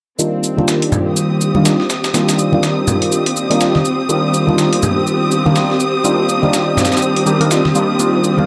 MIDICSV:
0, 0, Header, 1, 4, 480
1, 0, Start_track
1, 0, Key_signature, -3, "minor"
1, 0, Tempo, 487805
1, 188, Time_signature, 4, 2, 24, 8
1, 8328, End_track
2, 0, Start_track
2, 0, Title_t, "String section"
2, 0, Program_c, 0, 48
2, 185, Note_on_c, 0, 60, 82
2, 678, Note_on_c, 0, 67, 81
2, 1090, Note_on_c, 0, 87, 76
2, 8328, Note_off_c, 0, 60, 0
2, 8328, Note_off_c, 0, 67, 0
2, 8328, Note_off_c, 0, 87, 0
2, 8328, End_track
3, 0, Start_track
3, 0, Title_t, "Synth keys"
3, 0, Program_c, 1, 88
3, 184, Note_on_c, 1, 51, 69
3, 186, Note_on_c, 1, 55, 64
3, 188, Note_on_c, 1, 58, 67
3, 192, Note_on_c, 1, 62, 64
3, 194, Note_on_c, 1, 65, 76
3, 533, Note_off_c, 1, 51, 0
3, 534, Note_off_c, 1, 55, 0
3, 536, Note_off_c, 1, 58, 0
3, 537, Note_off_c, 1, 62, 0
3, 539, Note_off_c, 1, 65, 0
3, 558, Note_on_c, 1, 51, 84
3, 564, Note_on_c, 1, 55, 80
3, 569, Note_on_c, 1, 58, 77
3, 575, Note_on_c, 1, 62, 76
3, 581, Note_on_c, 1, 65, 93
3, 1490, Note_off_c, 1, 51, 0
3, 1493, Note_off_c, 1, 55, 0
3, 1495, Note_off_c, 1, 58, 0
3, 1498, Note_off_c, 1, 62, 0
3, 1501, Note_off_c, 1, 65, 0
3, 1524, Note_on_c, 1, 51, 84
3, 1527, Note_on_c, 1, 55, 78
3, 1530, Note_on_c, 1, 58, 75
3, 1533, Note_on_c, 1, 62, 74
3, 1535, Note_on_c, 1, 65, 91
3, 1611, Note_off_c, 1, 51, 0
3, 1612, Note_off_c, 1, 55, 0
3, 1614, Note_off_c, 1, 58, 0
3, 1615, Note_off_c, 1, 62, 0
3, 1616, Note_off_c, 1, 65, 0
3, 1624, Note_on_c, 1, 51, 79
3, 1626, Note_on_c, 1, 55, 69
3, 1629, Note_on_c, 1, 58, 74
3, 1632, Note_on_c, 1, 62, 73
3, 1635, Note_on_c, 1, 65, 86
3, 1787, Note_off_c, 1, 51, 0
3, 1788, Note_off_c, 1, 55, 0
3, 1790, Note_off_c, 1, 58, 0
3, 1791, Note_off_c, 1, 62, 0
3, 1793, Note_off_c, 1, 65, 0
3, 2103, Note_on_c, 1, 51, 69
3, 2106, Note_on_c, 1, 55, 67
3, 2109, Note_on_c, 1, 58, 66
3, 2111, Note_on_c, 1, 62, 63
3, 2114, Note_on_c, 1, 65, 78
3, 2453, Note_off_c, 1, 51, 0
3, 2454, Note_off_c, 1, 55, 0
3, 2456, Note_off_c, 1, 58, 0
3, 2457, Note_off_c, 1, 62, 0
3, 2459, Note_off_c, 1, 65, 0
3, 2478, Note_on_c, 1, 51, 83
3, 2484, Note_on_c, 1, 55, 77
3, 2489, Note_on_c, 1, 58, 75
3, 2495, Note_on_c, 1, 62, 76
3, 2500, Note_on_c, 1, 65, 92
3, 3410, Note_off_c, 1, 51, 0
3, 3413, Note_off_c, 1, 55, 0
3, 3415, Note_off_c, 1, 58, 0
3, 3418, Note_off_c, 1, 62, 0
3, 3421, Note_off_c, 1, 65, 0
3, 3444, Note_on_c, 1, 51, 85
3, 3446, Note_on_c, 1, 55, 76
3, 3449, Note_on_c, 1, 58, 79
3, 3452, Note_on_c, 1, 62, 77
3, 3454, Note_on_c, 1, 65, 91
3, 3531, Note_off_c, 1, 51, 0
3, 3532, Note_off_c, 1, 55, 0
3, 3533, Note_off_c, 1, 58, 0
3, 3535, Note_off_c, 1, 62, 0
3, 3536, Note_off_c, 1, 65, 0
3, 3542, Note_on_c, 1, 51, 81
3, 3545, Note_on_c, 1, 55, 73
3, 3548, Note_on_c, 1, 58, 72
3, 3551, Note_on_c, 1, 62, 71
3, 3554, Note_on_c, 1, 65, 89
3, 3706, Note_off_c, 1, 51, 0
3, 3708, Note_off_c, 1, 55, 0
3, 3709, Note_off_c, 1, 58, 0
3, 3711, Note_off_c, 1, 62, 0
3, 3712, Note_off_c, 1, 65, 0
3, 4022, Note_on_c, 1, 51, 72
3, 4025, Note_on_c, 1, 55, 66
3, 4028, Note_on_c, 1, 58, 66
3, 4030, Note_on_c, 1, 62, 65
3, 4033, Note_on_c, 1, 65, 80
3, 4373, Note_off_c, 1, 51, 0
3, 4374, Note_off_c, 1, 55, 0
3, 4376, Note_off_c, 1, 58, 0
3, 4377, Note_off_c, 1, 62, 0
3, 4378, Note_off_c, 1, 65, 0
3, 4397, Note_on_c, 1, 51, 85
3, 4402, Note_on_c, 1, 55, 77
3, 4408, Note_on_c, 1, 58, 76
3, 4413, Note_on_c, 1, 62, 77
3, 4419, Note_on_c, 1, 65, 95
3, 5329, Note_off_c, 1, 51, 0
3, 5332, Note_off_c, 1, 55, 0
3, 5335, Note_off_c, 1, 58, 0
3, 5337, Note_off_c, 1, 62, 0
3, 5340, Note_off_c, 1, 65, 0
3, 5364, Note_on_c, 1, 51, 84
3, 5367, Note_on_c, 1, 55, 77
3, 5369, Note_on_c, 1, 58, 78
3, 5372, Note_on_c, 1, 62, 75
3, 5374, Note_on_c, 1, 65, 90
3, 5451, Note_off_c, 1, 51, 0
3, 5452, Note_off_c, 1, 55, 0
3, 5453, Note_off_c, 1, 58, 0
3, 5455, Note_off_c, 1, 62, 0
3, 5456, Note_off_c, 1, 65, 0
3, 5462, Note_on_c, 1, 51, 79
3, 5465, Note_on_c, 1, 55, 73
3, 5467, Note_on_c, 1, 58, 74
3, 5471, Note_on_c, 1, 62, 70
3, 5473, Note_on_c, 1, 65, 88
3, 5627, Note_off_c, 1, 51, 0
3, 5628, Note_off_c, 1, 55, 0
3, 5629, Note_off_c, 1, 58, 0
3, 5631, Note_off_c, 1, 62, 0
3, 5632, Note_off_c, 1, 65, 0
3, 5943, Note_on_c, 1, 51, 72
3, 5946, Note_on_c, 1, 55, 65
3, 5948, Note_on_c, 1, 58, 66
3, 5951, Note_on_c, 1, 62, 66
3, 5954, Note_on_c, 1, 65, 79
3, 6293, Note_off_c, 1, 51, 0
3, 6294, Note_off_c, 1, 55, 0
3, 6295, Note_off_c, 1, 58, 0
3, 6297, Note_off_c, 1, 62, 0
3, 6298, Note_off_c, 1, 65, 0
3, 6318, Note_on_c, 1, 51, 84
3, 6323, Note_on_c, 1, 55, 78
3, 6329, Note_on_c, 1, 58, 79
3, 6334, Note_on_c, 1, 62, 77
3, 6340, Note_on_c, 1, 65, 95
3, 7123, Note_off_c, 1, 51, 0
3, 7125, Note_off_c, 1, 55, 0
3, 7128, Note_off_c, 1, 58, 0
3, 7131, Note_off_c, 1, 62, 0
3, 7134, Note_off_c, 1, 65, 0
3, 7142, Note_on_c, 1, 51, 73
3, 7145, Note_on_c, 1, 55, 69
3, 7148, Note_on_c, 1, 58, 66
3, 7150, Note_on_c, 1, 62, 68
3, 7153, Note_on_c, 1, 67, 81
3, 7251, Note_off_c, 1, 51, 0
3, 7253, Note_off_c, 1, 55, 0
3, 7254, Note_off_c, 1, 58, 0
3, 7255, Note_off_c, 1, 62, 0
3, 7257, Note_off_c, 1, 67, 0
3, 7283, Note_on_c, 1, 51, 89
3, 7285, Note_on_c, 1, 55, 82
3, 7288, Note_on_c, 1, 58, 81
3, 7291, Note_on_c, 1, 62, 79
3, 7293, Note_on_c, 1, 70, 99
3, 7370, Note_off_c, 1, 51, 0
3, 7371, Note_off_c, 1, 55, 0
3, 7373, Note_off_c, 1, 58, 0
3, 7374, Note_off_c, 1, 62, 0
3, 7375, Note_off_c, 1, 70, 0
3, 7381, Note_on_c, 1, 51, 65
3, 7384, Note_on_c, 1, 55, 60
3, 7387, Note_on_c, 1, 58, 61
3, 7390, Note_on_c, 1, 62, 59
3, 7392, Note_on_c, 1, 65, 75
3, 7491, Note_off_c, 1, 51, 0
3, 7493, Note_off_c, 1, 55, 0
3, 7494, Note_off_c, 1, 58, 0
3, 7495, Note_off_c, 1, 62, 0
3, 7496, Note_off_c, 1, 65, 0
3, 7622, Note_on_c, 1, 51, 69
3, 7625, Note_on_c, 1, 55, 63
3, 7628, Note_on_c, 1, 58, 64
3, 7630, Note_on_c, 1, 62, 62
3, 7633, Note_on_c, 1, 65, 75
3, 7841, Note_off_c, 1, 51, 0
3, 7843, Note_off_c, 1, 55, 0
3, 7844, Note_off_c, 1, 58, 0
3, 7846, Note_off_c, 1, 62, 0
3, 7847, Note_off_c, 1, 65, 0
3, 7861, Note_on_c, 1, 51, 69
3, 7864, Note_on_c, 1, 55, 65
3, 7867, Note_on_c, 1, 58, 66
3, 7870, Note_on_c, 1, 62, 64
3, 7872, Note_on_c, 1, 65, 81
3, 8212, Note_off_c, 1, 51, 0
3, 8214, Note_off_c, 1, 55, 0
3, 8215, Note_off_c, 1, 58, 0
3, 8216, Note_off_c, 1, 62, 0
3, 8218, Note_off_c, 1, 65, 0
3, 8236, Note_on_c, 1, 51, 85
3, 8241, Note_on_c, 1, 55, 79
3, 8247, Note_on_c, 1, 58, 79
3, 8252, Note_on_c, 1, 62, 81
3, 8258, Note_on_c, 1, 65, 92
3, 8328, Note_off_c, 1, 51, 0
3, 8328, Note_off_c, 1, 55, 0
3, 8328, Note_off_c, 1, 58, 0
3, 8328, Note_off_c, 1, 62, 0
3, 8328, Note_off_c, 1, 65, 0
3, 8328, End_track
4, 0, Start_track
4, 0, Title_t, "Drums"
4, 188, Note_on_c, 9, 82, 80
4, 286, Note_off_c, 9, 82, 0
4, 428, Note_on_c, 9, 82, 58
4, 526, Note_off_c, 9, 82, 0
4, 575, Note_on_c, 9, 63, 73
4, 669, Note_on_c, 9, 38, 104
4, 669, Note_on_c, 9, 82, 78
4, 673, Note_off_c, 9, 63, 0
4, 767, Note_off_c, 9, 38, 0
4, 767, Note_off_c, 9, 82, 0
4, 809, Note_on_c, 9, 42, 39
4, 906, Note_on_c, 9, 64, 91
4, 908, Note_off_c, 9, 42, 0
4, 908, Note_on_c, 9, 82, 64
4, 1005, Note_off_c, 9, 64, 0
4, 1006, Note_off_c, 9, 82, 0
4, 1147, Note_on_c, 9, 82, 76
4, 1245, Note_off_c, 9, 82, 0
4, 1388, Note_on_c, 9, 82, 59
4, 1487, Note_off_c, 9, 82, 0
4, 1523, Note_on_c, 9, 63, 85
4, 1621, Note_off_c, 9, 63, 0
4, 1628, Note_on_c, 9, 38, 106
4, 1628, Note_on_c, 9, 82, 80
4, 1726, Note_off_c, 9, 38, 0
4, 1726, Note_off_c, 9, 82, 0
4, 1769, Note_on_c, 9, 38, 41
4, 1868, Note_off_c, 9, 38, 0
4, 1868, Note_on_c, 9, 38, 93
4, 1868, Note_on_c, 9, 82, 72
4, 1966, Note_off_c, 9, 38, 0
4, 1966, Note_off_c, 9, 82, 0
4, 2009, Note_on_c, 9, 38, 95
4, 2009, Note_on_c, 9, 82, 69
4, 2108, Note_off_c, 9, 38, 0
4, 2108, Note_off_c, 9, 82, 0
4, 2108, Note_on_c, 9, 38, 94
4, 2108, Note_on_c, 9, 82, 71
4, 2207, Note_off_c, 9, 38, 0
4, 2207, Note_off_c, 9, 82, 0
4, 2250, Note_on_c, 9, 38, 92
4, 2250, Note_on_c, 9, 82, 69
4, 2348, Note_off_c, 9, 38, 0
4, 2348, Note_off_c, 9, 82, 0
4, 2348, Note_on_c, 9, 82, 60
4, 2447, Note_off_c, 9, 82, 0
4, 2488, Note_on_c, 9, 63, 76
4, 2586, Note_off_c, 9, 63, 0
4, 2589, Note_on_c, 9, 38, 106
4, 2589, Note_on_c, 9, 82, 78
4, 2687, Note_off_c, 9, 38, 0
4, 2687, Note_off_c, 9, 82, 0
4, 2829, Note_on_c, 9, 64, 85
4, 2829, Note_on_c, 9, 82, 64
4, 2927, Note_off_c, 9, 64, 0
4, 2927, Note_off_c, 9, 82, 0
4, 2970, Note_on_c, 9, 42, 39
4, 3069, Note_off_c, 9, 42, 0
4, 3069, Note_on_c, 9, 82, 75
4, 3168, Note_off_c, 9, 82, 0
4, 3211, Note_on_c, 9, 42, 41
4, 3309, Note_off_c, 9, 42, 0
4, 3310, Note_on_c, 9, 82, 61
4, 3409, Note_off_c, 9, 82, 0
4, 3451, Note_on_c, 9, 42, 38
4, 3549, Note_off_c, 9, 42, 0
4, 3549, Note_on_c, 9, 38, 106
4, 3549, Note_on_c, 9, 82, 78
4, 3648, Note_off_c, 9, 38, 0
4, 3648, Note_off_c, 9, 82, 0
4, 3690, Note_on_c, 9, 38, 52
4, 3696, Note_on_c, 9, 63, 66
4, 3788, Note_off_c, 9, 38, 0
4, 3789, Note_on_c, 9, 82, 63
4, 3794, Note_off_c, 9, 63, 0
4, 3888, Note_off_c, 9, 82, 0
4, 4029, Note_on_c, 9, 82, 82
4, 4127, Note_off_c, 9, 82, 0
4, 4269, Note_on_c, 9, 82, 62
4, 4367, Note_off_c, 9, 82, 0
4, 4414, Note_on_c, 9, 63, 84
4, 4509, Note_on_c, 9, 38, 109
4, 4509, Note_on_c, 9, 82, 81
4, 4513, Note_off_c, 9, 63, 0
4, 4608, Note_off_c, 9, 38, 0
4, 4608, Note_off_c, 9, 82, 0
4, 4651, Note_on_c, 9, 42, 40
4, 4749, Note_off_c, 9, 42, 0
4, 4749, Note_on_c, 9, 82, 65
4, 4753, Note_on_c, 9, 64, 90
4, 4847, Note_off_c, 9, 82, 0
4, 4851, Note_off_c, 9, 64, 0
4, 4989, Note_on_c, 9, 82, 79
4, 5088, Note_off_c, 9, 82, 0
4, 5229, Note_on_c, 9, 82, 63
4, 5327, Note_off_c, 9, 82, 0
4, 5374, Note_on_c, 9, 63, 88
4, 5468, Note_on_c, 9, 38, 105
4, 5468, Note_on_c, 9, 82, 79
4, 5473, Note_off_c, 9, 63, 0
4, 5566, Note_off_c, 9, 38, 0
4, 5566, Note_off_c, 9, 82, 0
4, 5610, Note_on_c, 9, 38, 41
4, 5708, Note_off_c, 9, 38, 0
4, 5709, Note_on_c, 9, 82, 61
4, 5807, Note_off_c, 9, 82, 0
4, 5949, Note_on_c, 9, 82, 79
4, 6047, Note_off_c, 9, 82, 0
4, 6188, Note_on_c, 9, 82, 62
4, 6287, Note_off_c, 9, 82, 0
4, 6328, Note_on_c, 9, 63, 80
4, 6426, Note_off_c, 9, 63, 0
4, 6429, Note_on_c, 9, 38, 108
4, 6429, Note_on_c, 9, 82, 84
4, 6528, Note_off_c, 9, 38, 0
4, 6528, Note_off_c, 9, 82, 0
4, 6662, Note_on_c, 9, 64, 89
4, 6668, Note_on_c, 9, 38, 83
4, 6668, Note_on_c, 9, 82, 62
4, 6739, Note_off_c, 9, 38, 0
4, 6739, Note_off_c, 9, 82, 0
4, 6739, Note_on_c, 9, 38, 84
4, 6739, Note_on_c, 9, 82, 62
4, 6761, Note_off_c, 9, 64, 0
4, 6809, Note_off_c, 9, 38, 0
4, 6809, Note_off_c, 9, 82, 0
4, 6809, Note_on_c, 9, 38, 80
4, 6809, Note_on_c, 9, 82, 60
4, 6859, Note_off_c, 9, 38, 0
4, 6859, Note_off_c, 9, 82, 0
4, 6859, Note_on_c, 9, 38, 78
4, 6859, Note_on_c, 9, 82, 60
4, 6908, Note_off_c, 9, 82, 0
4, 6908, Note_on_c, 9, 82, 76
4, 6957, Note_off_c, 9, 38, 0
4, 7007, Note_off_c, 9, 82, 0
4, 7049, Note_on_c, 9, 42, 39
4, 7148, Note_off_c, 9, 42, 0
4, 7148, Note_on_c, 9, 82, 63
4, 7247, Note_off_c, 9, 82, 0
4, 7290, Note_on_c, 9, 42, 41
4, 7388, Note_off_c, 9, 42, 0
4, 7389, Note_on_c, 9, 38, 105
4, 7389, Note_on_c, 9, 82, 79
4, 7487, Note_off_c, 9, 38, 0
4, 7487, Note_off_c, 9, 82, 0
4, 7530, Note_on_c, 9, 38, 53
4, 7531, Note_on_c, 9, 63, 57
4, 7627, Note_on_c, 9, 82, 63
4, 7628, Note_off_c, 9, 38, 0
4, 7630, Note_off_c, 9, 63, 0
4, 7726, Note_off_c, 9, 82, 0
4, 7867, Note_on_c, 9, 82, 82
4, 7966, Note_off_c, 9, 82, 0
4, 8107, Note_on_c, 9, 82, 62
4, 8205, Note_off_c, 9, 82, 0
4, 8252, Note_on_c, 9, 63, 84
4, 8328, Note_off_c, 9, 63, 0
4, 8328, End_track
0, 0, End_of_file